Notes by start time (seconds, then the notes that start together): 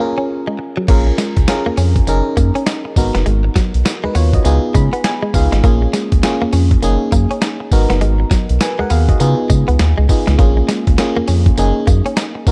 0.00 A#3 C#4 F4 G#4 A#4
0.18 C#4
0.47 G#3
0.59 muted clean electric guitar stroke
0.77 F#3
0.88 A#1 A#3 C#4 F4 G#4 A#4, kick, closed hi-hat, crash
1.07 muted clean electric guitar stroke
1.18 G#3, snare, closed hi-hat, tambourine
1.37 C#2, kick, closed hi-hat
1.48 C#4 F4 G#4 A#4, muted clean electric guitar stroke, snare, closed hi-hat, tambourine
1.66 F2 A#3
1.77 F2 C#4, open hi-hat, tambourine
1.96 kick, closed hi-hat
2.07 F#1 C#4 D#4 G#4 A#4, muted clean electric guitar stroke, closed hi-hat, tambourine
2.37 F#2 A#3, kick, closed hi-hat, tambourine
2.55 C#4, closed hi-hat
2.66 D#4, snare, closed hi-hat, tambourine
2.85 muted clean electric guitar stroke
2.96 G#1 B3 D#4 F#4 A#4, kick, open hi-hat, tambourine
3.15 F#1 B3, snare, closed hi-hat
3.26 G#1 G#3, closed hi-hat
3.44 muted clean electric guitar stroke
3.56 F#3, kick, snare, closed hi-hat, tambourine
3.74 B1, closed hi-hat
3.85 muted clean electric guitar stroke, snare, closed hi-hat, tambourine
4.04 D#2 G#3 D#4 B4
4.15 D#2 B3 F4 C#5, open hi-hat, tambourine
4.33 F#4 D#5, kick, closed hi-hat
4.45 C#2 B3 D#4 F4 G#4, muted clean electric guitar stroke, closed hi-hat, tambourine
4.74 C#3 G#3 B5, kick, closed hi-hat, tambourine
4.93 B3, closed hi-hat
5.04 G#5, snare, closed hi-hat, tambourine
5.23 G#3
5.34 C#2 B3 D#4 F4 G#4 F5, muted clean electric guitar stroke, kick, open hi-hat, tambourine
5.52 G#1 G#3, snare, closed hi-hat
5.64 A#1 A#3 C#4 F4 G#4, kick, closed hi-hat
5.82 muted clean electric guitar stroke
5.93 G#3, snare, closed hi-hat, tambourine
6.12 C#2, kick, closed hi-hat
6.23 A#3 C#4 F4 G#4, muted clean electric guitar stroke, snare, closed hi-hat, tambourine
6.42 F2 A#3
6.53 F2 C#4, open hi-hat, tambourine
6.71 kick, closed hi-hat
6.83 F#1 A#3 C#4 D#4 G#4, muted clean electric guitar stroke, closed hi-hat, tambourine
7.12 F#2 A#3, kick, closed hi-hat, tambourine
7.31 C#4, closed hi-hat
7.42 D#4, snare, closed hi-hat, tambourine
7.60 muted clean electric guitar stroke
7.72 G#1 B3 D#4 F#4 A#4, kick, open hi-hat, tambourine
7.90 F#1 B3, snare, closed hi-hat
8.01 G#1 G#3, closed hi-hat
8.20 muted clean electric guitar stroke
8.31 F#3, kick, snare, closed hi-hat, tambourine
8.49 B1, closed hi-hat
8.61 B4 G#5, muted clean electric guitar stroke, snare, closed hi-hat, tambourine
8.79 D#2 G#3 A#4 F#5
8.90 D#2 B3 G#4 F5, open hi-hat, tambourine
9.09 F#4 D#5, kick, closed hi-hat
9.20 C#3 B3 D#4 F4 G#4, muted clean electric guitar stroke, closed hi-hat, tambourine
9.50 C#3 G#3, kick, closed hi-hat, tambourine
9.68 C#2 B3, closed hi-hat
9.79 D#2, snare, closed hi-hat, tambourine
9.98 C#2 G#3
10.09 B3 D#4 F4 G#4, muted clean electric guitar stroke, kick, open hi-hat, tambourine
10.27 C#2 G#3, snare, closed hi-hat
10.39 A#1 A#3 C#4 F4 G#4, kick, closed hi-hat
10.57 muted clean electric guitar stroke
10.68 G#3, snare, closed hi-hat, tambourine
10.87 C#2, kick, closed hi-hat
10.98 A#3 C#4 F4 G#4, muted clean electric guitar stroke, snare, closed hi-hat, tambourine
11.17 F2 A#3
11.28 F2 C#4, open hi-hat, tambourine
11.46 kick, closed hi-hat
11.58 F#1 A#3 C#4 D#4 G#4, muted clean electric guitar stroke, closed hi-hat, tambourine
11.87 F#2 A#3, kick, closed hi-hat, tambourine
12.06 C#4, closed hi-hat
12.17 D#4, snare, closed hi-hat, tambourine
12.35 muted clean electric guitar stroke
12.47 G#1 B3 D#4 F#4 A#4, kick, open hi-hat, tambourine